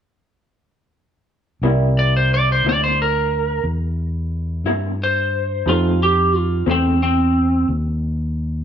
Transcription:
1.62 fingered electric bass C2, clean electric guitar C3 G3 A#3 E4, grand piano E4 G4 A#4 D5
1.99 lead electric guitar D5
2.17 lead electric guitar C5
2.34 lead electric guitar D5
2.52 lead electric guitar C5
2.63 fingered electric bass D2, clean electric guitar E4
2.67 clean electric guitar C3 G3 A#3, lead electric guitar D5
2.84 lead electric guitar C5
3.02 lead electric guitar A#4
3.64 fingered electric bass E2
4.64 fingered electric bass G2, clean electric guitar C3 G3 A#3 E4
5.04 lead electric guitar C5
5.66 clean electric guitar F2 D#3 A3 C4, fingered electric bass F2, grand piano D#4 G4 A4 C5, lead electric guitar F4
6.03 lead electric guitar G4
6.36 lead electric guitar F4
6.66 fingered electric bass E2, clean electric guitar F2 D#3 A3 C4
6.71 lead electric guitar C4
7.03 lead electric guitar C4
7.69 fingered electric bass D#2

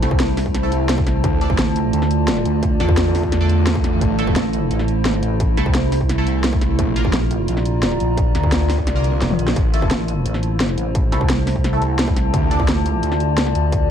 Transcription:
Already playing: synth drone C3 A3 E4, ambient pad E4 C5 A5
0.02 wobble bass C2, synth stab A3 E4 A4, snare, closed hi-hat
0.11 kick
0.20 snare, closed hi-hat
0.37 snare, open hi-hat
0.46 kick
0.55 snare, closed hi-hat
0.63 synth stab A3 E4 A4
0.72 closed hi-hat
0.89 snare, closed hi-hat
0.98 kick
1.07 snare, closed hi-hat
1.24 detuned saw bass D2, synth drone D3 F4, ambient pad F4, kick, closed hi-hat
1.41 synth stab D4 A4 D5, closed hi-hat
1.50 kick
1.58 wobble bass D2, ambient pad D5, snare, closed hi-hat
1.76 closed hi-hat
1.93 wobble bass D2, closed hi-hat
2.02 snare
2.11 closed hi-hat
2.28 snare, closed hi-hat
2.37 snare
2.45 wobble bass D2, closed hi-hat
2.63 kick, closed hi-hat
2.80 detuned saw bass E2, synth stab D4 A4 D5, snare, closed hi-hat
2.89 kick
2.97 snare, closed hi-hat
3.15 snare, open hi-hat
3.23 kick
3.32 snare, closed hi-hat
3.41 synth stab D4 A4 D5
3.49 closed hi-hat
3.67 snare, closed hi-hat
3.75 kick
3.84 snare, closed hi-hat
4.01 detuned saw bass A1, synth drone C3 E4, ambient pad E4, kick, closed hi-hat
4.19 synth stab A3 E4 A4, closed hi-hat
4.24 ambient pad C5, kick
4.36 wobble bass A1, snare, closed hi-hat
4.53 closed hi-hat
4.71 wobble bass A1, closed hi-hat
4.79 snare
4.88 closed hi-hat
5.05 snare, closed hi-hat
5.14 snare
5.23 wobble bass A1, closed hi-hat
5.40 kick, closed hi-hat
5.57 wobble bass C2, synth stab A3 E4 A4, snare, closed hi-hat
5.66 kick
5.75 snare, closed hi-hat
5.92 snare, open hi-hat
6.01 kick
6.09 snare, closed hi-hat
6.18 synth stab A3 E4 A4
6.27 closed hi-hat
6.44 snare, closed hi-hat
6.53 kick
6.61 snare, closed hi-hat
6.79 detuned saw bass A#1, synth drone D3 A#3 F4, ambient pad F4, kick, closed hi-hat
6.96 synth stab A#3 F4 A#4, closed hi-hat
7.05 kick
7.13 wobble bass A#1, ambient pad D5, snare, closed hi-hat
7.25 ambient pad A#5
7.31 closed hi-hat
7.48 wobble bass A#1, closed hi-hat
7.57 snare
7.65 closed hi-hat
7.83 snare, closed hi-hat
7.92 snare
8.00 wobble bass A#1, closed hi-hat
8.17 kick, closed hi-hat
8.35 detuned saw bass D2, snare, closed hi-hat
8.43 kick
8.52 snare, closed hi-hat
8.70 snare, open hi-hat
8.78 kick
8.87 detuned saw bass C2, snare, closed hi-hat
8.95 synth stab A#3 F4 A#4
9.04 closed hi-hat
9.22 wobble bass F1, snare, closed hi-hat
9.30 high tom
9.39 wobble bass A#1, closed hi-hat
9.48 snare
9.56 detuned saw bass A1, synth drone C3 A3 E4, ambient pad E4, kick, closed hi-hat
9.74 synth stab A3 E4 A4, ambient pad C5, closed hi-hat
9.82 kick
9.91 wobble bass A1, snare, closed hi-hat
10.08 closed hi-hat
10.26 wobble bass A1, closed hi-hat
10.34 snare
10.43 closed hi-hat
10.60 ambient pad A5, snare, closed hi-hat
10.69 snare
10.78 wobble bass A1, closed hi-hat
10.95 kick, closed hi-hat
11.12 wobble bass C2, synth stab A3 E4 A4, snare, closed hi-hat
11.21 kick
11.30 snare, closed hi-hat
11.47 snare, open hi-hat
11.56 kick
11.64 snare, closed hi-hat
11.73 synth stab A3 E4 A4
11.82 closed hi-hat
11.99 snare, closed hi-hat
12.08 kick
12.16 snare, closed hi-hat
12.34 detuned saw bass D2, synth drone D3 F4, ambient pad F4, kick, closed hi-hat
12.51 synth stab D4 A4 D5, closed hi-hat
12.60 kick
12.68 wobble bass D2, snare, closed hi-hat
12.82 ambient pad D5, closed hi-hat
13.03 wobble bass D2, closed hi-hat
13.12 snare
13.20 closed hi-hat
13.38 snare, closed hi-hat
13.46 snare
13.55 wobble bass D2, closed hi-hat
13.72 kick, closed hi-hat

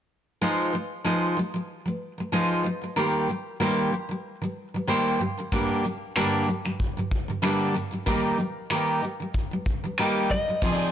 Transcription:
0.41 steel-string acoustic guitar F3 G#3 D#4 F4 C5
0.73 steel-string acoustic guitar F3 G#3
1.04 steel-string acoustic guitar F3 G#3 D#4 F4 C5
1.37 steel-string acoustic guitar F3 G#3
1.54 steel-string acoustic guitar F3 G#3
1.86 steel-string acoustic guitar F3 G#3
2.18 steel-string acoustic guitar F3 G#3
2.32 steel-string acoustic guitar F3 G#3 D#4 F4 C5
2.64 steel-string acoustic guitar F3 G#3
2.82 steel-string acoustic guitar F3 G#3
2.96 steel-string acoustic guitar D#3 G3 A#3 G4 C5
3.29 steel-string acoustic guitar D#3 G3
3.60 steel-string acoustic guitar D#3 G3 A#3 G4 C5
3.92 steel-string acoustic guitar D#3 G3
4.09 steel-string acoustic guitar D#3 G3
4.42 steel-string acoustic guitar D#3 G3
4.74 steel-string acoustic guitar D#3 G3
4.87 steel-string acoustic guitar D#3 G3 A#3 G4 C5
5.19 steel-string acoustic guitar G2 D3 G3
5.38 steel-string acoustic guitar G2 D3 G3
5.52 steel-string acoustic guitar G2 D3 G3 A#3 D4 G4, kick, shaker
5.84 steel-string acoustic guitar G2 D3 G3, shaker
6.16 steel-string acoustic guitar G2 D3 G3 A#3 D4 G4, finger snap, shaker
6.47 steel-string acoustic guitar G2 D3 G3, shaker
6.65 steel-string acoustic guitar G2 D3 G3, finger snap
6.80 kick, shaker
6.97 steel-string acoustic guitar G2 D3 G3
7.11 kick, shaker
7.28 steel-string acoustic guitar G2 D3 G3
7.42 steel-string acoustic guitar G2 D3 G3 A#3 D4 G4, finger snap, shaker
7.74 steel-string acoustic guitar G2 D3 G3, shaker
7.91 steel-string acoustic guitar G2 D3 G3
8.06 steel-string acoustic guitar D#3 G3 A#3 D#4 G4, kick, shaker
8.38 steel-string acoustic guitar D#3 G3, shaker
8.70 steel-string acoustic guitar D#3 G3 A#3 D#4 G4, finger snap, shaker
9.02 steel-string acoustic guitar D#3 G3, shaker
9.20 steel-string acoustic guitar D#3 G3
9.34 kick, shaker
9.51 steel-string acoustic guitar D#3 G3
9.66 kick, shaker
9.84 steel-string acoustic guitar D#3 G3
9.98 steel-string acoustic guitar D#3 G3 A#3 D#4 G4, finger snap, shaker
10.30 steel-string acoustic guitar D#3 G3, clean electric guitar D#5, kick, shaker
10.48 steel-string acoustic guitar D#3 G3
10.62 steel-string acoustic guitar F3 C4 D#4 G#4, kick, crash
10.73 clean electric guitar D5

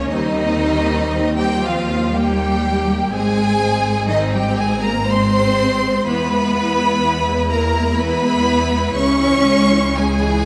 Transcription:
Already playing: viola section C#4, violin section C#5
0.10 double bass section D#2, cello section D#3, viola section G3 C4, violin section D#4 D#5
0.63 viola section G3
1.15 viola section C4
1.38 cello section G3, violin section G4 G5
1.63 cello section F3, violin section F4 F5
2.12 cello section G3, viola section A#3, violin section G4 G5
2.64 viola section A#3
3.12 double bass section G#1, cello section G#3, viola section G#3 C4, violin section G#4 G#5
3.62 viola section C4
4.09 cello section D#3, viola section C4, violin section D#4 D#5
4.33 cello section G3, violin section G4 G5
4.58 cello section G#3, violin section G#4 G#5
4.83 cello section A#3, violin section A#4 A#5
5.07 viola section G#3 C4, cello section C4, violin section C5 C6
6.06 double bass section E2, viola section E3 E4, cello section B3, violin section B4 B5
6.30 viola section G#3
6.53 viola section E3
6.78 viola section G#3
7.01 viola section E3
7.26 viola section G#3
7.50 viola section E3, cello section A#3, violin section A#4 A#5
7.74 viola section G#3
7.96 viola section E3, cello section B3, violin section B4 B5
8.21 viola section G#3
8.46 viola section E3
8.70 viola section G#3
8.94 double bass section C#2, viola section C#3, cello section C#4, violin section C#5 C#6
9.20 viola section E3
9.44 viola section G#3
9.70 viola section E3
9.96 viola section C#3, cello section G#3, violin section G#4 G#5
10.21 viola section E3

